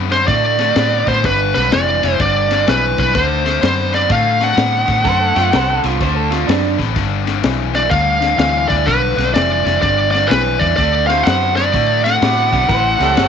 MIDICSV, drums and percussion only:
0, 0, Header, 1, 2, 480
1, 0, Start_track
1, 0, Tempo, 477327
1, 1241, Time_signature, 4, 2, 24, 8
1, 13354, End_track
2, 0, Start_track
2, 0, Title_t, "Drums"
2, 115, Note_on_c, 9, 51, 59
2, 121, Note_on_c, 9, 38, 33
2, 216, Note_off_c, 9, 51, 0
2, 222, Note_off_c, 9, 38, 0
2, 278, Note_on_c, 9, 51, 78
2, 282, Note_on_c, 9, 36, 103
2, 284, Note_on_c, 9, 38, 32
2, 379, Note_off_c, 9, 51, 0
2, 382, Note_off_c, 9, 36, 0
2, 385, Note_off_c, 9, 38, 0
2, 589, Note_on_c, 9, 51, 58
2, 595, Note_on_c, 9, 38, 33
2, 690, Note_off_c, 9, 51, 0
2, 696, Note_off_c, 9, 38, 0
2, 761, Note_on_c, 9, 51, 78
2, 767, Note_on_c, 9, 38, 113
2, 861, Note_off_c, 9, 51, 0
2, 867, Note_off_c, 9, 38, 0
2, 1073, Note_on_c, 9, 51, 57
2, 1077, Note_on_c, 9, 36, 73
2, 1079, Note_on_c, 9, 38, 34
2, 1174, Note_off_c, 9, 51, 0
2, 1178, Note_off_c, 9, 36, 0
2, 1180, Note_off_c, 9, 38, 0
2, 1245, Note_on_c, 9, 51, 78
2, 1248, Note_on_c, 9, 36, 103
2, 1251, Note_on_c, 9, 38, 32
2, 1346, Note_off_c, 9, 51, 0
2, 1349, Note_off_c, 9, 36, 0
2, 1352, Note_off_c, 9, 38, 0
2, 1563, Note_on_c, 9, 51, 59
2, 1569, Note_on_c, 9, 38, 32
2, 1663, Note_off_c, 9, 51, 0
2, 1669, Note_off_c, 9, 38, 0
2, 1728, Note_on_c, 9, 51, 79
2, 1734, Note_on_c, 9, 38, 111
2, 1828, Note_off_c, 9, 51, 0
2, 1834, Note_off_c, 9, 38, 0
2, 2042, Note_on_c, 9, 51, 64
2, 2048, Note_on_c, 9, 38, 33
2, 2143, Note_off_c, 9, 51, 0
2, 2149, Note_off_c, 9, 38, 0
2, 2208, Note_on_c, 9, 51, 81
2, 2211, Note_on_c, 9, 36, 113
2, 2215, Note_on_c, 9, 38, 32
2, 2309, Note_off_c, 9, 51, 0
2, 2312, Note_off_c, 9, 36, 0
2, 2315, Note_off_c, 9, 38, 0
2, 2521, Note_on_c, 9, 51, 66
2, 2527, Note_on_c, 9, 38, 34
2, 2622, Note_off_c, 9, 51, 0
2, 2628, Note_off_c, 9, 38, 0
2, 2690, Note_on_c, 9, 51, 83
2, 2696, Note_on_c, 9, 38, 112
2, 2791, Note_off_c, 9, 51, 0
2, 2797, Note_off_c, 9, 38, 0
2, 2998, Note_on_c, 9, 51, 64
2, 3001, Note_on_c, 9, 36, 70
2, 3004, Note_on_c, 9, 38, 31
2, 3098, Note_off_c, 9, 51, 0
2, 3101, Note_off_c, 9, 36, 0
2, 3104, Note_off_c, 9, 38, 0
2, 3165, Note_on_c, 9, 51, 83
2, 3169, Note_on_c, 9, 36, 104
2, 3171, Note_on_c, 9, 38, 34
2, 3265, Note_off_c, 9, 51, 0
2, 3269, Note_off_c, 9, 36, 0
2, 3272, Note_off_c, 9, 38, 0
2, 3478, Note_on_c, 9, 51, 58
2, 3484, Note_on_c, 9, 38, 34
2, 3579, Note_off_c, 9, 51, 0
2, 3585, Note_off_c, 9, 38, 0
2, 3649, Note_on_c, 9, 51, 86
2, 3655, Note_on_c, 9, 38, 106
2, 3749, Note_off_c, 9, 51, 0
2, 3755, Note_off_c, 9, 38, 0
2, 3959, Note_on_c, 9, 51, 58
2, 3965, Note_on_c, 9, 38, 33
2, 4060, Note_off_c, 9, 51, 0
2, 4066, Note_off_c, 9, 38, 0
2, 4119, Note_on_c, 9, 51, 76
2, 4123, Note_on_c, 9, 36, 102
2, 4125, Note_on_c, 9, 38, 34
2, 4220, Note_off_c, 9, 51, 0
2, 4224, Note_off_c, 9, 36, 0
2, 4226, Note_off_c, 9, 38, 0
2, 4434, Note_on_c, 9, 51, 58
2, 4440, Note_on_c, 9, 38, 34
2, 4534, Note_off_c, 9, 51, 0
2, 4540, Note_off_c, 9, 38, 0
2, 4599, Note_on_c, 9, 51, 77
2, 4605, Note_on_c, 9, 38, 111
2, 4699, Note_off_c, 9, 51, 0
2, 4705, Note_off_c, 9, 38, 0
2, 4905, Note_on_c, 9, 51, 56
2, 4910, Note_on_c, 9, 36, 74
2, 4911, Note_on_c, 9, 38, 34
2, 5006, Note_off_c, 9, 51, 0
2, 5010, Note_off_c, 9, 36, 0
2, 5012, Note_off_c, 9, 38, 0
2, 5077, Note_on_c, 9, 51, 78
2, 5079, Note_on_c, 9, 36, 103
2, 5083, Note_on_c, 9, 38, 32
2, 5178, Note_off_c, 9, 51, 0
2, 5180, Note_off_c, 9, 36, 0
2, 5184, Note_off_c, 9, 38, 0
2, 5390, Note_on_c, 9, 51, 58
2, 5396, Note_on_c, 9, 38, 33
2, 5491, Note_off_c, 9, 51, 0
2, 5497, Note_off_c, 9, 38, 0
2, 5559, Note_on_c, 9, 51, 79
2, 5565, Note_on_c, 9, 38, 105
2, 5660, Note_off_c, 9, 51, 0
2, 5666, Note_off_c, 9, 38, 0
2, 5870, Note_on_c, 9, 51, 58
2, 5876, Note_on_c, 9, 38, 32
2, 5970, Note_off_c, 9, 51, 0
2, 5976, Note_off_c, 9, 38, 0
2, 6040, Note_on_c, 9, 36, 105
2, 6041, Note_on_c, 9, 51, 83
2, 6047, Note_on_c, 9, 38, 31
2, 6140, Note_off_c, 9, 36, 0
2, 6142, Note_off_c, 9, 51, 0
2, 6148, Note_off_c, 9, 38, 0
2, 6353, Note_on_c, 9, 51, 63
2, 6359, Note_on_c, 9, 38, 33
2, 6454, Note_off_c, 9, 51, 0
2, 6460, Note_off_c, 9, 38, 0
2, 6526, Note_on_c, 9, 51, 84
2, 6532, Note_on_c, 9, 38, 112
2, 6626, Note_off_c, 9, 51, 0
2, 6632, Note_off_c, 9, 38, 0
2, 6831, Note_on_c, 9, 36, 73
2, 6833, Note_on_c, 9, 51, 60
2, 6839, Note_on_c, 9, 38, 33
2, 6931, Note_off_c, 9, 36, 0
2, 6934, Note_off_c, 9, 51, 0
2, 6940, Note_off_c, 9, 38, 0
2, 6998, Note_on_c, 9, 51, 87
2, 6999, Note_on_c, 9, 36, 107
2, 7004, Note_on_c, 9, 38, 33
2, 7099, Note_off_c, 9, 51, 0
2, 7100, Note_off_c, 9, 36, 0
2, 7105, Note_off_c, 9, 38, 0
2, 7312, Note_on_c, 9, 51, 62
2, 7318, Note_on_c, 9, 38, 30
2, 7413, Note_off_c, 9, 51, 0
2, 7419, Note_off_c, 9, 38, 0
2, 7477, Note_on_c, 9, 51, 88
2, 7483, Note_on_c, 9, 38, 109
2, 7577, Note_off_c, 9, 51, 0
2, 7583, Note_off_c, 9, 38, 0
2, 7789, Note_on_c, 9, 51, 63
2, 7795, Note_on_c, 9, 38, 32
2, 7889, Note_off_c, 9, 51, 0
2, 7895, Note_off_c, 9, 38, 0
2, 7957, Note_on_c, 9, 51, 83
2, 7958, Note_on_c, 9, 36, 110
2, 7963, Note_on_c, 9, 38, 34
2, 8058, Note_off_c, 9, 51, 0
2, 8059, Note_off_c, 9, 36, 0
2, 8064, Note_off_c, 9, 38, 0
2, 8265, Note_on_c, 9, 51, 60
2, 8271, Note_on_c, 9, 38, 35
2, 8366, Note_off_c, 9, 51, 0
2, 8372, Note_off_c, 9, 38, 0
2, 8438, Note_on_c, 9, 51, 82
2, 8444, Note_on_c, 9, 38, 113
2, 8538, Note_off_c, 9, 51, 0
2, 8544, Note_off_c, 9, 38, 0
2, 8748, Note_on_c, 9, 51, 57
2, 8750, Note_on_c, 9, 36, 72
2, 8754, Note_on_c, 9, 38, 34
2, 8848, Note_off_c, 9, 51, 0
2, 8850, Note_off_c, 9, 36, 0
2, 8855, Note_off_c, 9, 38, 0
2, 8921, Note_on_c, 9, 36, 100
2, 8925, Note_on_c, 9, 51, 75
2, 8931, Note_on_c, 9, 38, 34
2, 9021, Note_off_c, 9, 36, 0
2, 9026, Note_off_c, 9, 51, 0
2, 9032, Note_off_c, 9, 38, 0
2, 9235, Note_on_c, 9, 51, 57
2, 9241, Note_on_c, 9, 38, 32
2, 9335, Note_off_c, 9, 51, 0
2, 9342, Note_off_c, 9, 38, 0
2, 9407, Note_on_c, 9, 51, 80
2, 9413, Note_on_c, 9, 38, 113
2, 9508, Note_off_c, 9, 51, 0
2, 9514, Note_off_c, 9, 38, 0
2, 9719, Note_on_c, 9, 51, 59
2, 9725, Note_on_c, 9, 38, 33
2, 9819, Note_off_c, 9, 51, 0
2, 9825, Note_off_c, 9, 38, 0
2, 9881, Note_on_c, 9, 36, 105
2, 9883, Note_on_c, 9, 51, 75
2, 9889, Note_on_c, 9, 38, 34
2, 9982, Note_off_c, 9, 36, 0
2, 9983, Note_off_c, 9, 51, 0
2, 9989, Note_off_c, 9, 38, 0
2, 10202, Note_on_c, 9, 51, 59
2, 10208, Note_on_c, 9, 38, 34
2, 10302, Note_off_c, 9, 51, 0
2, 10309, Note_off_c, 9, 38, 0
2, 10367, Note_on_c, 9, 51, 82
2, 10373, Note_on_c, 9, 38, 110
2, 10468, Note_off_c, 9, 51, 0
2, 10474, Note_off_c, 9, 38, 0
2, 10673, Note_on_c, 9, 36, 75
2, 10677, Note_on_c, 9, 51, 59
2, 10683, Note_on_c, 9, 38, 34
2, 10774, Note_off_c, 9, 36, 0
2, 10778, Note_off_c, 9, 51, 0
2, 10784, Note_off_c, 9, 38, 0
2, 10843, Note_on_c, 9, 36, 103
2, 10848, Note_on_c, 9, 51, 83
2, 10854, Note_on_c, 9, 38, 34
2, 10944, Note_off_c, 9, 36, 0
2, 10948, Note_off_c, 9, 51, 0
2, 10954, Note_off_c, 9, 38, 0
2, 11160, Note_on_c, 9, 51, 60
2, 11166, Note_on_c, 9, 38, 31
2, 11260, Note_off_c, 9, 51, 0
2, 11266, Note_off_c, 9, 38, 0
2, 11328, Note_on_c, 9, 51, 82
2, 11334, Note_on_c, 9, 38, 106
2, 11429, Note_off_c, 9, 51, 0
2, 11435, Note_off_c, 9, 38, 0
2, 11637, Note_on_c, 9, 51, 67
2, 11643, Note_on_c, 9, 38, 35
2, 11737, Note_off_c, 9, 51, 0
2, 11743, Note_off_c, 9, 38, 0
2, 11804, Note_on_c, 9, 36, 104
2, 11806, Note_on_c, 9, 51, 86
2, 11812, Note_on_c, 9, 38, 32
2, 11905, Note_off_c, 9, 36, 0
2, 11906, Note_off_c, 9, 51, 0
2, 11912, Note_off_c, 9, 38, 0
2, 12126, Note_on_c, 9, 51, 66
2, 12132, Note_on_c, 9, 38, 34
2, 12226, Note_off_c, 9, 51, 0
2, 12232, Note_off_c, 9, 38, 0
2, 12290, Note_on_c, 9, 51, 87
2, 12296, Note_on_c, 9, 38, 113
2, 12390, Note_off_c, 9, 51, 0
2, 12396, Note_off_c, 9, 38, 0
2, 12596, Note_on_c, 9, 36, 76
2, 12602, Note_on_c, 9, 51, 61
2, 12608, Note_on_c, 9, 38, 34
2, 12697, Note_off_c, 9, 36, 0
2, 12702, Note_off_c, 9, 51, 0
2, 12708, Note_off_c, 9, 38, 0
2, 12763, Note_on_c, 9, 51, 79
2, 12764, Note_on_c, 9, 36, 107
2, 12769, Note_on_c, 9, 38, 35
2, 12863, Note_off_c, 9, 51, 0
2, 12864, Note_off_c, 9, 36, 0
2, 12869, Note_off_c, 9, 38, 0
2, 13077, Note_on_c, 9, 51, 58
2, 13083, Note_on_c, 9, 38, 33
2, 13177, Note_off_c, 9, 51, 0
2, 13183, Note_off_c, 9, 38, 0
2, 13243, Note_on_c, 9, 51, 80
2, 13249, Note_on_c, 9, 38, 108
2, 13344, Note_off_c, 9, 51, 0
2, 13350, Note_off_c, 9, 38, 0
2, 13354, End_track
0, 0, End_of_file